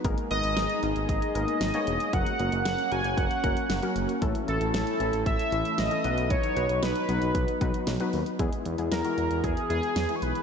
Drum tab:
HH |xxxxxxxxxxxxxxxx|xxxxxxxxxxxxxxxx|xxxxxxxxxxxxxxxx|xxxxxxxxxxxxxxox|
SD |----o-------o---|----o-------o---|----o-------o---|----o-------o---|
BD |o-------o-------|o-------o-o-----|o-------o-------|o-------o-o-----|

HH |xxxxxxxxxxxxxxxx|
SD |----o-------o---|
BD |o-------o-------|